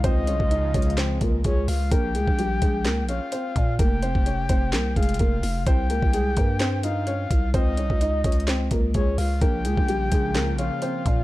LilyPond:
<<
  \new Staff \with { instrumentName = "Soft synth lead" } { \time 4/4 \key bes \dorian \tempo 4 = 128 ees''2 r4 des''8 f''8 | g''2~ g''8 f''4. | g''2~ g''8 f''4. | g''2~ g''8 f''4. |
ees''2 r4 des''8 f''8 | g''2~ g''8 f''4. | }
  \new Staff \with { instrumentName = "Felt piano" } { \time 4/4 \key bes \dorian <c' c''>8 <des' des''>8 <ees' ees''>8 <des' des''>8 <c' c''>8 <bes bes'>8 <aes aes'>8 r8 | <bes bes'>8 <aes aes'>8 <g g'>8 <aes aes'>8 <bes bes'>8 <des' des''>8 <c' c''>8 r8 | <bes bes'>8 <c' c''>8 <des' des''>8 <c' c''>8 <bes bes'>8 <aes aes'>8 <bes bes'>8 r8 | <c' c''>8 <bes bes'>8 <aes aes'>8 <bes bes'>8 <c' c''>8 <ees' ees''>8 <des' des''>8 r8 |
<c' c''>8 <des' des''>8 <ees' ees''>8 <des' des''>8 <c' c''>8 <bes bes'>8 <aes aes'>8 r8 | <bes bes'>8 <aes aes'>8 <g g'>8 <aes aes'>8 <bes bes'>8 <des' des''>8 <c' c''>8 r8 | }
  \new Staff \with { instrumentName = "Analog synth pad" } { \clef bass \time 4/4 \key bes \dorian <des f aes f'>1 | r1 | r1 | r1 |
r1 | <des f bes f'>1 | }
  \new Staff \with { instrumentName = "808-style bass" } { \clef bass \time 4/4 \key bes \dorian des,8 c,16 des,8. des,4 des,8 des,8 des,8 | bes,,8 des,16 bes,,8. bes,,8 des,16. bes,,16. r8. bes,8 | f,,8. f,,8. f,,8 c,8 f,,8 f,,8 f,,8 | c,8 des,16 c,8. g,2 c,8 |
des,8 c,16 des,8. des,4 des,8 des,8 des,8 | bes,,8 des,16 bes,,8. bes,,8 des,16. bes,,16. r8. bes,8 | }
  \new DrumStaff \with { instrumentName = "Drums" } \drummode { \time 4/4 <hh bd>8 hh16 bd16 \tuplet 3/2 { hh16 r16 r16 <hh bd>16 hh16 hh16 } <hc hh sn>8 <hh bd>8 <hh bd>8 hho8 | <hh bd>8 hh16 bd16 hh8 <hh bd>8 <hc hh sn>8 hh8 hh8 <hh bd>8 | <hh bd>8 hh16 bd16 hh8 <hh bd>8 <hc hh sn>8 <hh bd>32 hh32 hh32 hh32 <hh bd>8 hho8 | <hh bd>8 hh16 bd16 hh8 <hh bd>8 <hc hh sn>8 hh8 hh8 <hh bd>8 |
<hh bd>8 hh16 bd16 \tuplet 3/2 { hh16 r16 r16 <hh bd>16 hh16 hh16 } <hc hh sn>8 <hh bd>8 <hh bd>8 hho8 | <hh bd>8 hh16 bd16 hh8 <hh bd>8 <hc hh sn>8 hh8 hh8 <hh bd>8 | }
>>